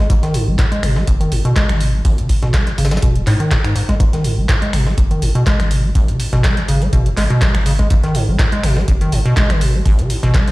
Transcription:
0.10 sub bass G#1, acid bass G#2, kick, closed hi-hat, tambourine
0.23 acid bass D#3, snare, closed hi-hat
0.34 acid bass G#2, open hi-hat, tambourine
0.47 sub bass G#1, acid bass G#3
0.59 acid bass A2, kick, snare, clap, closed hi-hat, tambourine
0.72 acid bass G#3, closed hi-hat
0.83 sub bass G#1, acid bass B2, finger snap, open hi-hat, tambourine
0.96 acid bass G#3, snare
1.07 sub bass F#1, acid bass G#1, kick, closed hi-hat, tambourine
1.21 acid bass D#3, closed hi-hat
1.32 sub bass G#1, acid bass G#2, open hi-hat, tambourine
1.45 acid bass B2, closed hi-hat
1.56 acid bass G#3, kick, snare, clap, closed hi-hat, tambourine
1.69 sub bass G#1, acid bass D#3, finger snap, snare, closed hi-hat
1.80 acid bass B2, open hi-hat, tambourine
1.94 acid bass G#3
2.05 acid bass G#1, sub bass G#1, kick, closed hi-hat, open hi-hat
2.18 acid bass C#3, closed hi-hat
2.29 acid bass G#2, kick, open hi-hat, tambourine
2.42 sub bass G#1, acid bass B2, snare, closed hi-hat
2.54 acid bass G#3, kick, snare, clap, closed hi-hat, tambourine
2.67 acid bass D#3, snare, closed hi-hat
2.78 sub bass G#1, acid bass C#3, open hi-hat, tambourine
2.85 snare, tambourine
2.91 acid bass G#3, snare, closed hi-hat, tambourine
2.97 snare, tambourine
3.02 sub bass D#1, acid bass B2, kick, closed hi-hat, tambourine
3.16 acid bass C#3, closed hi-hat
3.27 sub bass G#2, acid bass A2, snare, clap, open hi-hat, tambourine
3.40 acid bass D#3, closed hi-hat
3.51 acid bass G#2, kick, snare, clap, closed hi-hat, tambourine
3.64 sub bass G#2, acid bass G#2, finger snap, closed hi-hat
3.76 acid bass G#2, open hi-hat, tambourine
3.89 acid bass G#3, kick, snare, closed hi-hat
4.00 sub bass G#1, acid bass G#2, kick, closed hi-hat, tambourine
4.13 acid bass D#3, snare, closed hi-hat
4.24 acid bass G#2, open hi-hat, tambourine
4.38 sub bass G#1, acid bass G#3
4.49 acid bass A2, kick, snare, clap, closed hi-hat, tambourine
4.62 acid bass G#3, closed hi-hat
4.73 sub bass G#1, acid bass B2, finger snap, open hi-hat, tambourine
4.86 acid bass G#3, snare
4.98 sub bass F#1, acid bass G#1, kick, closed hi-hat, tambourine
5.11 acid bass D#3, closed hi-hat
5.22 sub bass G#1, acid bass G#2, open hi-hat, tambourine
5.35 acid bass B2, closed hi-hat
5.47 acid bass G#3, kick, snare, clap, closed hi-hat, tambourine
5.60 sub bass G#1, acid bass D#3, finger snap, snare, closed hi-hat
5.71 acid bass B2, open hi-hat, tambourine
5.84 acid bass G#3
5.95 acid bass G#1, sub bass G#1, kick, closed hi-hat, open hi-hat
6.08 acid bass C#3, closed hi-hat
6.20 acid bass G#2, open hi-hat, tambourine
6.33 sub bass G#1, acid bass B2, snare, closed hi-hat
6.44 acid bass G#3, kick, snare, clap, closed hi-hat, tambourine
6.57 acid bass D#3, snare, closed hi-hat
6.68 sub bass G#1, acid bass C#3, open hi-hat, tambourine
6.82 acid bass G#3, closed hi-hat
6.93 sub bass F#1, acid bass B2, kick, closed hi-hat, tambourine
7.06 acid bass C#3, closed hi-hat
7.17 sub bass G#1, acid bass G#3, snare, clap, open hi-hat, tambourine
7.30 acid bass B2, closed hi-hat
7.41 acid bass G#3, kick, snare, clap, closed hi-hat, tambourine
7.55 sub bass G#1, acid bass D#3, finger snap, closed hi-hat
7.66 acid bass C#3, open hi-hat, tambourine
7.79 acid bass G#3, kick, snare, closed hi-hat
7.90 sub bass G#1, acid bass G#2, kick, closed hi-hat, tambourine
8.03 acid bass D#3, snare, closed hi-hat
8.15 acid bass G#2, open hi-hat, tambourine
8.28 sub bass G#1, acid bass G#3
8.39 acid bass A2, kick, snare, clap, closed hi-hat, tambourine
8.52 acid bass G#3, closed hi-hat
8.63 sub bass G#1, acid bass B2, finger snap, open hi-hat, tambourine
8.77 acid bass G#3, snare
8.88 sub bass F#1, acid bass G#1, kick, closed hi-hat, tambourine
9.01 acid bass D#3, closed hi-hat
9.12 sub bass G#1, acid bass G#2, open hi-hat, tambourine
9.26 acid bass B2, closed hi-hat
9.37 acid bass G#3, kick, snare, clap, closed hi-hat, tambourine
9.50 sub bass G#1, acid bass D#3, finger snap, snare, closed hi-hat
9.61 acid bass B2, open hi-hat, tambourine
9.74 acid bass G#3
9.86 sub bass G#1, acid bass G#1, kick, closed hi-hat, open hi-hat
9.99 acid bass C#3, closed hi-hat
10.10 acid bass G#2, open hi-hat, tambourine
10.23 sub bass G#1, acid bass B2, snare, closed hi-hat
10.34 acid bass G#3, kick, snare, clap, closed hi-hat, tambourine
10.47 acid bass D#3, snare, closed hi-hat

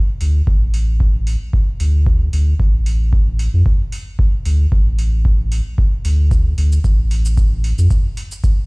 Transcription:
0.21 sub bass D2, open hi-hat
0.47 sub bass A1, kick
0.74 open hi-hat
1.00 kick
1.27 open hi-hat
1.53 kick
1.80 sub bass D2, open hi-hat
2.06 kick
2.33 sub bass D2, open hi-hat
2.60 sub bass A1, kick
2.86 open hi-hat
3.13 kick
3.39 open hi-hat
3.54 sub bass F2
3.66 kick
3.92 open hi-hat
4.19 kick
4.45 sub bass D2, open hi-hat
4.72 sub bass A1, kick
4.99 open hi-hat
5.25 kick
5.52 open hi-hat
5.78 kick
6.05 sub bass D2, open hi-hat
6.31 kick, cabasa
6.58 sub bass D2, open hi-hat
6.72 cabasa
6.84 sub bass A1, kick, cabasa
7.11 open hi-hat
7.25 cabasa
7.37 kick, cabasa
7.64 open hi-hat
7.78 sub bass F2, cabasa
7.91 kick, cabasa
8.17 open hi-hat
8.31 cabasa
8.44 kick, cabasa

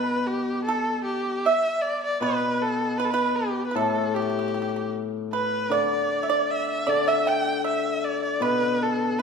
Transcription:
Already playing: hammered dulcimer B2, erhu B4, pipa B4
0.27 erhu G4
0.65 erhu A4, pipa A4
1.05 erhu G4
1.45 erhu E5, pipa E5
1.82 erhu D5
2.04 erhu D5
2.21 hammered dulcimer B2, pipa B4, erhu B4
2.62 erhu A4
2.98 erhu B4, pipa B4
3.04 erhu A4
3.11 erhu B4, pipa B4
3.35 erhu G4
3.66 erhu B4
3.71 hammered dulcimer A2, erhu A4, pipa B4
3.76 pipa A4
4.14 erhu G4, pipa G4
4.22 pipa G4
4.30 pipa G4
4.39 pipa G4
4.48 pipa G4
4.54 pipa G4
4.62 pipa G4
4.69 pipa G4
4.76 pipa G4
5.33 pipa B4, erhu B4
5.70 hammered dulcimer D3, pipa D5
5.74 erhu D5
6.23 pipa E5
6.30 pipa D5
6.51 erhu E5
6.69 erhu E5
6.87 hammered dulcimer D3, pipa D5, erhu D5
7.08 pipa E5, erhu E5
7.27 pipa G5, erhu G5
7.64 pipa E5, erhu E5
8.05 erhu D5
8.23 erhu D5
8.40 hammered dulcimer B2, pipa B4, erhu B4
8.83 erhu A4
9.19 erhu B4

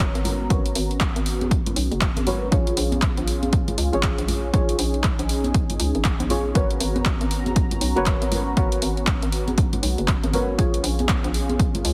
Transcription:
Already playing: analog synth pad B3 C#4 F#4 A#5, synth stab F#4 A#4 B4 C#5
0.00 kick, closed hi-hat
0.15 fm bass G#1, closed hi-hat
0.24 open hi-hat, low conga
0.50 fm bass G#1, synth stab F#4 A#4 B4 C#5, kick, closed hi-hat
0.66 closed hi-hat
0.75 fm bass G#1, open hi-hat
0.91 closed hi-hat
1.00 kick, clap, closed hi-hat
1.16 fm bass G#1, closed hi-hat
1.26 open hi-hat
1.41 closed hi-hat, high conga
1.51 kick, closed hi-hat
1.66 closed hi-hat, low conga
1.76 fm bass B1, open hi-hat
1.92 fm bass F#1, closed hi-hat
2.01 kick, clap, closed hi-hat
2.16 fm bass G#1, closed hi-hat, high conga
2.26 synth stab F#4 A#4 B4 C#5, open hi-hat, low conga
2.51 fm bass A#1, synth stab F4 G#4 C#5, analog synth pad F4 G#4, kick, closed hi-hat
2.67 closed hi-hat
2.77 fm bass A#1, open hi-hat
2.92 closed hi-hat, high conga
3.02 kick, clap, closed hi-hat
3.17 fm bass A#1, closed hi-hat
3.28 open hi-hat
3.43 closed hi-hat, high conga
3.53 kick, closed hi-hat
3.68 closed hi-hat, low conga
3.78 fm bass C#2, open hi-hat
3.92 fm bass G#1, synth stab F4 G#4 C#5, closed hi-hat
4.03 kick, clap, closed hi-hat
4.18 fm bass A#1, closed hi-hat
4.28 open hi-hat, low conga
4.53 fm bass A#1, analog synth pad D#4, synth stab F4 G#4 C#5, kick, closed hi-hat
4.69 closed hi-hat
4.79 fm bass A#1, open hi-hat
4.94 closed hi-hat
5.04 kick, clap, closed hi-hat
5.19 fm bass A#1, closed hi-hat
5.29 open hi-hat
5.44 closed hi-hat, high conga
5.54 kick, closed hi-hat
5.70 closed hi-hat, low conga
5.80 fm bass C#2, open hi-hat
5.95 fm bass G#1, closed hi-hat
6.04 kick, clap, closed hi-hat
6.20 fm bass A#1, closed hi-hat, high conga
6.30 synth stab F4 G#4 C#5, open hi-hat, low conga
6.55 fm bass G#1, analog synth pad B3 F#4 A#5, synth stab F#4 A#4 B4 C#5, kick, closed hi-hat
6.71 closed hi-hat
6.80 fm bass G#1, open hi-hat
6.96 closed hi-hat, high conga
7.05 kick, clap, closed hi-hat
7.21 fm bass G#1, closed hi-hat
7.31 open hi-hat
7.46 closed hi-hat, high conga
7.56 kick, closed hi-hat
7.71 closed hi-hat, low conga
7.81 fm bass B1, open hi-hat
7.96 fm bass F#1, synth stab F#4 A#4 B4 C#5, closed hi-hat
8.06 kick, clap, closed hi-hat
8.22 fm bass G#1, closed hi-hat
8.32 open hi-hat, low conga
8.57 fm bass G#1, synth stab F#4 A#4 B4 C#5, kick, closed hi-hat
8.72 closed hi-hat
8.82 fm bass G#1, open hi-hat
8.97 closed hi-hat
9.07 kick, clap, closed hi-hat
9.22 fm bass G#1, closed hi-hat
9.32 open hi-hat
9.48 closed hi-hat, high conga
9.58 kick, closed hi-hat
9.73 closed hi-hat, low conga
9.83 fm bass B1, open hi-hat
9.98 fm bass F#1, closed hi-hat
10.08 kick, clap, closed hi-hat
10.24 fm bass G#1, closed hi-hat, high conga
10.33 synth stab F#4 A#4 B4 C#5, open hi-hat, low conga
10.58 fm bass A#1, analog synth pad C#4 F4 G#4, synth stab F4 G#4 C#5, kick, closed hi-hat
10.74 closed hi-hat
10.84 fm bass A#1, open hi-hat
10.99 closed hi-hat, high conga
11.09 kick, clap, closed hi-hat
11.24 fm bass A#1, closed hi-hat
11.34 open hi-hat
11.49 closed hi-hat, high conga
11.59 kick, closed hi-hat
11.75 closed hi-hat, low conga
11.85 fm bass C#2, open hi-hat

